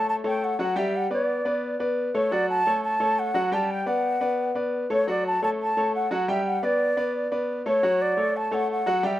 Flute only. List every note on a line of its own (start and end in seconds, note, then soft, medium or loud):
0.09 0.15 A5 loud
0.27 0.46 G5 loud
0.44 0.60 F#5 loud
0.61 0.80 F#5 loud
0.79 0.98 E5 loud
0.96 1.12 F#5 loud
1.13 1.77 D5 medium
2.16 2.33 C#5 loud
2.32 2.49 D5 loud
2.49 2.81 A5 loud
2.84 3.20 A5 loud
3.19 3.55 F#5 loud
3.53 3.72 A5 loud
3.71 3.89 G5 loud
3.88 4.56 F#5 loud
4.92 5.07 C#5 loud
5.09 5.24 D5 loud
5.26 5.41 A5 loud
5.43 5.49 A5 loud
5.61 5.92 A5 loud
5.95 6.10 F#5 loud
6.12 6.27 F#5 medium
6.29 6.44 E5 medium
6.46 6.65 F#5 loud
6.64 7.32 D5 loud
7.67 8.03 C#5 loud
8.02 8.38 D5 loud
8.37 8.55 A5 loud
8.54 8.70 F#5 loud
8.71 9.08 F#5 loud
9.06 9.20 E5 loud